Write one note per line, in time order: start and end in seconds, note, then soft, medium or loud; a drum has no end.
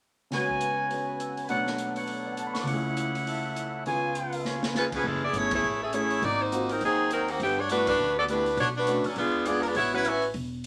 0.30 1.49 C#3 soft
0.30 1.50 G#3 soft
0.30 0.89 B3 soft
0.30 1.50 F#4 medium
0.30 1.51 F#4 soft
0.30 1.48 B4 medium
0.30 1.50 C#5 medium
0.30 1.35 G#5 medium
0.30 snare soft
0.30 open hi-hat soft
0.35 0.92 C#5 soft
0.49 kick soft
0.61 closed hi-hat soft
0.90 1.50 B3 soft
0.90 1.50 C#4 soft
0.90 1.51 G#4 soft
0.90 1.49 C#5 soft
0.90 open hi-hat soft
1.05 1.15 B5 soft
1.13 1.23 C#6 soft
1.20 1.33 E6 soft
1.20 closed hi-hat soft
1.28 1.39 F#5 soft
1.35 1.45 G#5 soft
1.35 open hi-hat soft
1.42 1.53 B5 soft
1.49 2.68 B2 soft
1.49 2.68 F#3 soft
1.49 2.67 A3 soft
1.49 2.67 D4 medium
1.49 2.68 D4 soft
1.49 2.67 A4 medium
1.49 1.95 B4 medium
1.49 2.68 C#5 medium
1.49 1.95 F#5 medium
1.49 open hi-hat soft
1.67 snare soft
1.78 closed hi-hat soft
1.96 2.68 B4 medium
1.96 2.66 C#5 medium
1.96 2.66 F#5 medium
1.96 open hi-hat soft
2.07 open hi-hat soft
2.24 2.34 D5 soft
2.32 2.42 F#5 soft
2.37 2.52 A5 soft
2.37 closed hi-hat soft
2.47 2.58 B5 soft
2.54 2.63 C#6 soft
2.54 snare soft
2.54 open hi-hat soft
2.61 3.84 C#2 soft
2.61 2.71 D6 soft
2.65 3.85 C#3 soft
2.65 3.86 A3 soft
2.65 3.86 E4 medium
2.65 3.85 C#5 medium
2.65 3.86 F#5 medium
2.65 open hi-hat soft
2.71 3.88 E4 soft
2.71 3.86 G#4 medium
2.97 closed hi-hat soft
3.15 open hi-hat soft
3.27 3.86 A4 medium
3.27 3.86 E5 medium
3.27 open hi-hat soft
3.56 closed hi-hat soft
3.86 5.04 C#2 soft
3.86 5.04 C#3 soft
3.86 5.04 B3 soft
3.86 5.04 F4 medium
3.86 5.05 F4 soft
3.86 5.05 G#4 medium
3.86 5.04 B4 medium
3.86 4.44 C#5 medium
3.86 4.44 G#5 medium
3.86 open hi-hat soft
4.15 closed hi-hat soft
4.33 open hi-hat soft
4.45 5.04 C#5 medium
4.45 4.82 F5 medium
4.45 4.75 G#5 medium
4.45 snare soft
4.60 4.70 C#6 soft
4.60 snare medium
4.67 4.78 B5 soft
4.75 4.85 G#3 medium
4.75 4.85 C#4 medium
4.75 4.85 F4 medium
4.75 4.85 B4 medium
4.75 4.87 G#5 soft
4.75 snare medium
4.82 4.94 F5 soft
4.90 4.99 C#6 soft
4.90 kick medium
4.90 crash medium
4.95 5.05 F3 medium
4.95 5.05 B3 medium
4.95 5.05 C#4 medium
4.95 5.05 G#4 medium
4.95 5.07 B5 medium
5.04 5.31 F#1 medium
5.04 5.23 E3 medium
5.04 5.23 G#3 medium
5.04 5.23 C#4 medium
5.04 5.24 A4 medium
5.24 5.35 B3 medium
5.24 5.34 E4 medium
5.24 5.34 G#4 medium
5.24 5.34 D5 medium
5.33 5.61 G1 medium
5.33 5.50 A3 soft
5.33 5.53 A3 medium
5.33 5.50 C#4 soft
5.33 5.50 E4 soft
5.33 5.53 E4 medium
5.33 5.50 G#4 medium
5.33 5.53 G#4 medium
5.33 5.53 C#5 medium
5.33 closed hi-hat soft
5.51 5.80 A3 medium
5.51 5.80 E4 medium
5.51 5.80 G#4 medium
5.51 5.80 C#5 medium
5.51 kick medium
5.51 ride medium
5.63 6.19 A1 medium
5.82 5.93 C#4 medium
5.82 5.93 G#4 medium
5.82 5.93 A4 medium
5.82 5.93 E5 medium
5.93 6.23 A3 medium
5.93 6.23 C#4 medium
5.93 6.23 E4 soft
5.93 6.23 E4 medium
5.93 6.23 G#4 medium
5.93 6.23 C#5 medium
5.93 closed hi-hat soft
6.10 open hi-hat soft
6.22 6.78 G#1 medium
6.22 6.41 A#3 medium
6.22 6.41 D#4 medium
6.22 6.41 F#4 medium
6.22 6.41 D5 medium
6.22 open hi-hat soft
6.42 6.70 A#3 medium
6.42 6.70 D#4 medium
6.42 6.71 F#4 medium
6.42 6.71 C5 medium
6.51 6.67 A#3 soft
6.51 6.68 C4 soft
6.51 6.68 F4 soft
6.51 6.68 F#4 medium
6.51 closed hi-hat medium
6.69 6.82 F#3 medium
6.69 6.82 C4 medium
6.69 6.82 D#4 medium
6.69 6.82 A#4 medium
6.69 open hi-hat soft
6.81 7.37 D#2 medium
6.81 7.10 F#3 medium
6.81 7.10 C4 medium
6.81 7.10 D#4 medium
6.81 7.10 G#4 medium
6.81 open hi-hat soft
7.10 7.28 F#3 medium
7.10 7.28 C4 medium
7.10 7.29 D#4 medium
7.10 7.29 A#4 medium
7.10 closed hi-hat soft
7.28 7.41 D#3 medium
7.28 7.41 A#3 medium
7.28 7.41 C4 medium
7.28 7.41 F#4 medium
7.28 open hi-hat soft
7.40 7.96 G2 medium
7.40 7.58 D3 medium
7.40 7.58 A3 medium
7.40 7.58 B3 medium
7.40 7.58 G4 medium
7.40 open hi-hat soft
7.59 7.70 A3 medium
7.59 7.70 D4 medium
7.59 7.70 F#4 medium
7.59 7.71 C#5 medium
7.69 7.86 A3 medium
7.69 7.87 A3 medium
7.69 7.86 B3 soft
7.69 7.87 D4 medium
7.69 7.86 E4 soft
7.69 7.86 F#4 medium
7.69 7.87 F#4 medium
7.69 7.87 B4 medium
7.69 closed hi-hat soft
7.87 8.16 A3 medium
7.87 8.16 D4 medium
7.87 8.16 F#4 medium
7.87 8.16 B4 medium
7.87 kick medium
7.87 ride medium
7.99 8.55 D2 medium
8.19 8.24 B3 medium
8.19 8.24 F#4 medium
8.19 8.24 A4 medium
8.19 8.24 D5 medium
8.28 8.45 A3 soft
8.28 8.57 A3 medium
8.28 8.45 B3 soft
8.28 8.58 D4 medium
8.28 8.45 E4 soft
8.28 8.58 F#4 medium
8.28 8.45 G4 medium
8.28 8.57 B4 medium
8.28 closed hi-hat soft
8.46 open hi-hat soft
8.57 9.02 B1 medium
8.57 8.67 A3 medium
8.57 8.67 D4 medium
8.57 8.67 F#4 medium
8.57 8.67 C#5 medium
8.57 open hi-hat soft
8.77 9.04 A3 medium
8.77 9.04 D4 medium
8.77 9.04 F#4 medium
8.77 9.04 B4 medium
8.87 9.04 A3 medium
8.87 9.04 C#4 soft
8.87 9.04 D4 soft
8.87 9.04 F#4 medium
8.87 closed hi-hat medium
9.04 9.18 F#3 medium
9.04 9.18 C#4 medium
9.04 9.17 D4 medium
9.04 9.18 A4 medium
9.04 muted upright bass stroke soft
9.04 open hi-hat soft
9.16 9.73 E2 medium
9.16 9.45 G#3 medium
9.16 9.45 B3 medium
9.16 9.45 D4 medium
9.16 9.45 F4 medium
9.16 open hi-hat soft
9.45 9.63 G#3 medium
9.45 9.63 B3 soft
9.45 9.60 B3 medium
9.45 9.63 D4 soft
9.45 9.61 F4 medium
9.45 9.63 F4 medium
9.45 9.61 G#4 medium
9.45 9.60 D5 medium
9.45 closed hi-hat soft
9.61 9.65 A#4 medium
9.61 open hi-hat soft
9.66 9.77 G#3 medium
9.66 9.77 D4 medium
9.66 9.77 F4 medium
9.66 9.78 B4 medium
9.75 10.32 A1 medium
9.75 9.93 B3 medium
9.75 9.93 E4 medium
9.75 9.93 F#4 medium
9.75 9.93 C#5 medium
9.75 open hi-hat soft
9.94 10.04 F#3 medium
9.94 10.05 B3 soft
9.94 10.05 C#4 medium
9.94 10.05 E4 medium
9.94 10.06 E4 medium
9.94 10.06 B4 medium
9.94 10.06 C#5 medium
9.94 10.06 F#5 medium
10.05 10.24 C#4 medium
10.05 10.24 F#4 medium
10.05 10.24 B4 medium
10.05 10.24 E5 medium
10.05 closed hi-hat medium
10.22 open hi-hat soft
10.34 10.66 E1 medium
10.34 open hi-hat soft